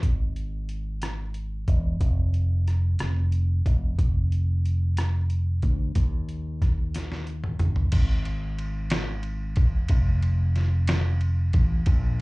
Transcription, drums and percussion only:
0.03 kick medium
0.03 closed hi-hat medium
0.36 closed hi-hat soft
0.69 closed hi-hat soft
1.02 cross-stick medium
1.02 closed hi-hat medium
1.34 closed hi-hat soft
1.68 kick medium
1.68 closed hi-hat soft
2.01 kick medium
2.01 closed hi-hat medium
2.34 closed hi-hat soft
2.67 cross-stick soft
2.67 closed hi-hat soft
2.99 cross-stick medium
2.99 closed hi-hat medium
3.32 closed hi-hat soft
3.66 kick medium
3.66 closed hi-hat soft
3.99 kick medium
3.99 closed hi-hat medium
4.32 closed hi-hat soft
4.66 closed hi-hat soft
4.97 cross-stick medium
4.97 closed hi-hat medium
5.30 closed hi-hat soft
5.62 kick medium
5.62 closed hi-hat soft
5.95 kick medium
5.95 closed hi-hat medium
6.29 closed hi-hat soft
6.62 kick medium
6.62 cross-stick soft
6.62 closed hi-hat soft
6.94 snare soft
6.94 closed hi-hat medium
7.12 snare soft
7.27 closed hi-hat soft
7.44 mid tom medium
7.59 closed hi-hat soft
7.59 mid tom medium
7.76 floor tom medium
7.92 kick medium
7.92 crash medium
7.92 ride bell medium
8.25 ride bell soft
8.59 ride bell soft
8.90 snare loud
8.90 ride bell medium
9.23 ride bell soft
9.56 kick loud
9.56 ride bell soft
9.89 kick medium
9.89 ride bell medium
10.22 ride bell soft
10.56 snare soft
10.56 ride bell soft
10.88 snare loud
10.88 ride bell medium
11.21 ride bell soft
11.53 kick loud
11.53 ride bell soft
11.86 kick loud
11.86 ride bell medium

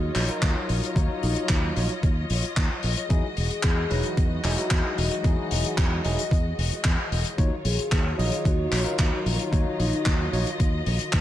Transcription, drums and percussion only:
0.15 clap medium
0.15 open hi-hat loud
0.29 closed hi-hat medium
0.42 kick loud
0.42 clap loud
0.42 closed hi-hat medium
0.69 open hi-hat loud
0.84 closed hi-hat medium
0.96 kick loud
0.96 closed hi-hat medium
1.23 open hi-hat loud
1.36 closed hi-hat medium
1.49 kick loud
1.49 clap loud
1.49 closed hi-hat medium
1.76 open hi-hat loud
1.89 closed hi-hat medium
2.03 kick loud
2.03 closed hi-hat medium
2.30 open hi-hat loud
2.43 closed hi-hat medium
2.56 kick loud
2.56 clap loud
2.56 closed hi-hat medium
2.83 open hi-hat loud
2.97 closed hi-hat medium
3.10 kick loud
3.10 closed hi-hat medium
3.37 open hi-hat loud
3.51 closed hi-hat medium
3.63 kick loud
3.63 clap loud
3.63 closed hi-hat medium
3.91 open hi-hat medium
4.03 closed hi-hat medium
4.17 kick loud
4.17 closed hi-hat medium
4.44 clap medium
4.44 open hi-hat loud
4.58 closed hi-hat medium
4.71 kick loud
4.71 clap loud
4.71 closed hi-hat medium
4.98 open hi-hat loud
5.11 closed hi-hat medium
5.24 kick loud
5.24 closed hi-hat medium
5.51 open hi-hat loud
5.64 closed hi-hat medium
5.78 kick loud
5.78 clap loud
5.78 closed hi-hat medium
6.05 open hi-hat loud
6.19 closed hi-hat medium
6.31 kick loud
6.31 closed hi-hat medium
6.59 open hi-hat loud
6.72 closed hi-hat medium
6.84 kick loud
6.84 clap loud
6.84 closed hi-hat medium
7.12 open hi-hat loud
7.25 closed hi-hat medium
7.38 kick loud
7.38 closed hi-hat medium
7.65 open hi-hat loud
7.79 closed hi-hat medium
7.92 kick loud
7.92 clap loud
7.92 closed hi-hat medium
8.19 open hi-hat loud
8.32 closed hi-hat medium
8.45 kick loud
8.45 closed hi-hat medium
8.72 clap medium
8.72 open hi-hat loud
8.86 closed hi-hat medium
8.98 kick loud
8.98 clap loud
8.98 closed hi-hat medium
9.26 open hi-hat loud
9.39 closed hi-hat medium
9.53 kick loud
9.53 closed hi-hat medium
9.80 open hi-hat medium
9.93 closed hi-hat medium
10.06 kick loud
10.06 clap loud
10.06 closed hi-hat medium
10.33 open hi-hat medium
10.47 closed hi-hat medium
10.60 kick loud
10.60 closed hi-hat medium
10.86 open hi-hat loud
10.99 closed hi-hat medium
11.13 kick loud
11.13 clap loud
11.13 closed hi-hat medium

